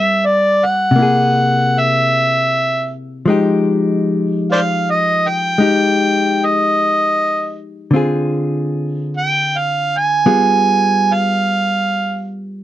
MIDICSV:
0, 0, Header, 1, 3, 480
1, 0, Start_track
1, 0, Tempo, 1160542
1, 1350, Time_signature, 4, 2, 24, 8
1, 2793, Tempo, 1178782
1, 5189, End_track
2, 0, Start_track
2, 0, Title_t, "Harmonica"
2, 0, Program_c, 0, 22
2, 0, Note_on_c, 0, 76, 70
2, 106, Note_on_c, 0, 74, 76
2, 112, Note_off_c, 0, 76, 0
2, 268, Note_on_c, 0, 78, 90
2, 275, Note_off_c, 0, 74, 0
2, 742, Note_on_c, 0, 76, 73
2, 749, Note_off_c, 0, 78, 0
2, 1206, Note_off_c, 0, 76, 0
2, 1870, Note_on_c, 0, 72, 58
2, 1870, Note_on_c, 0, 74, 58
2, 1870, Note_on_c, 0, 77, 83
2, 1899, Note_off_c, 0, 74, 0
2, 1901, Note_off_c, 0, 72, 0
2, 2028, Note_on_c, 0, 75, 68
2, 2035, Note_off_c, 0, 77, 0
2, 2185, Note_on_c, 0, 79, 83
2, 2192, Note_off_c, 0, 75, 0
2, 2667, Note_on_c, 0, 75, 64
2, 2674, Note_off_c, 0, 79, 0
2, 3128, Note_off_c, 0, 75, 0
2, 3778, Note_on_c, 0, 79, 78
2, 3943, Note_on_c, 0, 77, 71
2, 3949, Note_off_c, 0, 79, 0
2, 4106, Note_on_c, 0, 80, 85
2, 4112, Note_off_c, 0, 77, 0
2, 4576, Note_on_c, 0, 77, 77
2, 4582, Note_off_c, 0, 80, 0
2, 5047, Note_off_c, 0, 77, 0
2, 5189, End_track
3, 0, Start_track
3, 0, Title_t, "Hollow-body jazz guitar"
3, 0, Program_c, 1, 26
3, 0, Note_on_c, 1, 55, 52
3, 0, Note_on_c, 1, 60, 60
3, 0, Note_on_c, 1, 70, 57
3, 377, Note_on_c, 1, 48, 48
3, 386, Note_off_c, 1, 55, 0
3, 388, Note_off_c, 1, 60, 0
3, 395, Note_off_c, 1, 70, 0
3, 396, Note_on_c, 1, 58, 55
3, 408, Note_on_c, 1, 64, 55
3, 423, Note_on_c, 1, 68, 59
3, 1343, Note_off_c, 1, 48, 0
3, 1347, Note_on_c, 1, 53, 51
3, 1352, Note_off_c, 1, 58, 0
3, 1355, Note_on_c, 1, 56, 50
3, 1358, Note_off_c, 1, 64, 0
3, 1360, Note_on_c, 1, 63, 60
3, 1363, Note_off_c, 1, 68, 0
3, 1365, Note_on_c, 1, 67, 60
3, 2304, Note_off_c, 1, 56, 0
3, 2309, Note_on_c, 1, 56, 38
3, 2313, Note_off_c, 1, 63, 0
3, 2318, Note_on_c, 1, 63, 46
3, 2319, Note_off_c, 1, 67, 0
3, 2324, Note_on_c, 1, 67, 41
3, 3263, Note_on_c, 1, 50, 52
3, 3267, Note_off_c, 1, 53, 0
3, 3268, Note_off_c, 1, 56, 0
3, 3272, Note_off_c, 1, 63, 0
3, 3274, Note_on_c, 1, 60, 53
3, 3275, Note_off_c, 1, 67, 0
3, 3278, Note_on_c, 1, 65, 55
3, 3285, Note_on_c, 1, 68, 58
3, 4219, Note_off_c, 1, 65, 0
3, 4220, Note_off_c, 1, 60, 0
3, 4221, Note_on_c, 1, 55, 46
3, 4221, Note_on_c, 1, 59, 53
3, 4222, Note_off_c, 1, 50, 0
3, 4223, Note_off_c, 1, 68, 0
3, 4224, Note_on_c, 1, 65, 50
3, 4228, Note_on_c, 1, 68, 50
3, 5189, Note_off_c, 1, 55, 0
3, 5189, Note_off_c, 1, 59, 0
3, 5189, Note_off_c, 1, 65, 0
3, 5189, Note_off_c, 1, 68, 0
3, 5189, End_track
0, 0, End_of_file